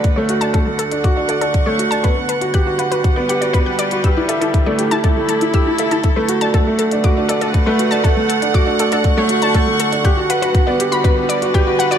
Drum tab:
HH |x-xxx-xxx-xxx-xx|x-xxx-xxx-xxx-xx|x-xxx-xxx-xxx-xx|x-xxx-xxx-xxx-xx|
BD |o---o---o---o---|o---o---o---o---|o---o---o---o---|o---o---o---o---|

HH |x-xxx-xxx-xxx-xx|x-xxx-xxx-xxx-xx|
BD |o---o---o---o---|o---o---o---o---|